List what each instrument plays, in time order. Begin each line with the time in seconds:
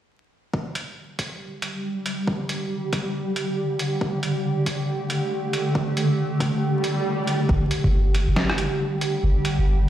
0.54 ambient pad D3 G3 G4, kick
0.75 closed hi-hat
1.19 kick, closed hi-hat
1.62 closed hi-hat
2.06 closed hi-hat
2.28 kick
2.49 closed hi-hat
2.93 kick, closed hi-hat
3.36 closed hi-hat
3.79 closed hi-hat
4.01 ambient pad A3, kick
4.23 closed hi-hat
4.66 kick, closed hi-hat
5.10 closed hi-hat
5.53 closed hi-hat
5.75 kick
5.97 closed hi-hat
6.40 kick, closed hi-hat
6.62 swell
6.84 closed hi-hat
7.27 closed hi-hat
7.49 sub bass G1, ambient pad D3 G3 G4, kick
7.71 closed hi-hat
7.84 sub bass G1, kick
8.15 closed hi-hat
8.28 sub bass G1
8.36 snare
8.50 cross-stick
8.58 closed hi-hat
9.01 closed hi-hat
9.23 sub bass G1
9.45 closed hi-hat
9.58 sub bass G1